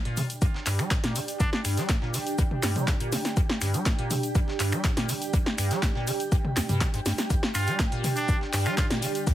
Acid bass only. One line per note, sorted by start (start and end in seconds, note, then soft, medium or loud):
0.05 0.19 A#2 medium
0.17 0.21 D3 medium
0.42 0.46 G2 loud
0.66 0.80 G2 medium
0.79 0.93 G3 loud
0.91 0.98 G2 medium
1.04 1.17 A#2 medium
1.16 1.20 D3 medium
1.40 1.44 G2 loud
1.65 1.79 G2 medium
1.77 1.91 G3 loud
1.89 1.96 G2 medium
2.02 2.16 A#2 medium
2.14 2.18 D3 medium
2.39 2.43 G2 loud
2.63 2.77 G2 medium
2.76 2.89 G3 loud
2.88 2.95 G2 medium
3.00 3.14 A#2 medium
3.12 3.16 D3 medium
3.37 3.41 G2 loud
3.62 3.76 G2 medium
3.74 3.87 G3 loud
3.86 3.93 G2 medium
3.99 4.12 A#2 medium
4.11 4.15 D3 medium
4.35 4.39 G2 loud
4.60 4.74 G2 medium
4.72 4.86 G3 loud
4.84 4.91 G2 medium
4.97 5.10 A#2 medium
5.09 5.13 D3 medium
5.34 5.38 G2 loud
5.58 5.72 G2 medium
5.71 5.84 G3 loud
5.83 5.90 G2 medium
5.95 6.09 A#2 medium
6.07 6.12 D3 medium
6.32 6.36 G2 loud
6.56 6.61 F2 medium
6.69 6.83 G2 medium
6.81 6.88 C3 loud
6.94 7.00 G#2 medium
7.06 7.13 G2 medium
7.30 7.34 G2 loud
7.55 7.69 G2 medium
7.67 7.81 G3 loud
7.80 7.86 G2 medium
7.92 8.06 A#2 medium
8.04 8.08 D3 medium
8.29 8.33 G2 loud
8.53 8.67 G2 medium
8.66 8.79 G3 loud
8.78 8.85 G2 medium
8.90 9.04 A#2 medium
9.02 9.07 D3 medium
9.27 9.31 G2 loud